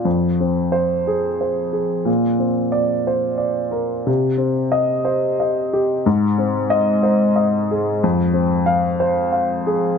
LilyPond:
\new Staff \with { instrumentName = "Grand piano" } { \time 3/4 \key f \dorian \tempo 4 = 90 << { r4 c''4 r4 | r4 d''4 r4 | r4 ees''4 r4 | r4 ees''4 r4 |
r4 f''4 r4 | } \\ { f,8 c'4 aes'8 c''8 aes'8 | bes,8 c'4 c''8 d''8 bes'8 | c8 c'4 c''8 ees''8 g'8 | aes,8 c'4 c''8 ees''8 aes'8 |
f,8 c'4 c''8 f''8 aes'8 | } >> }